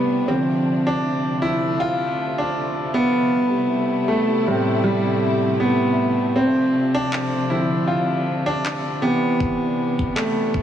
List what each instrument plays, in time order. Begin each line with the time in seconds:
Already playing: string section C3 E3 B3 D4, grand piano G3 A3 B3
0.28 string section C3 F3 A3, grand piano D3 F3 C4
0.87 grand piano D4
1.42 grand piano E4
1.80 grand piano F4
2.38 grand piano D4
2.94 grand piano B3
3.33 string section G3 E4
4.08 grand piano A3
4.47 grand piano A2 G3 C4
4.84 grand piano G3
5.60 grand piano B3
6.36 string section F3 D4, grand piano C4
6.95 grand piano D4
7.13 clap
7.50 grand piano D3 F3 C4 E4
7.88 grand piano F4
8.46 grand piano D4
8.66 clap
9.02 grand piano C3 E3 B3, string section E3 B3
9.40 kick
9.99 kick
10.16 grand piano A3, clap
10.54 kick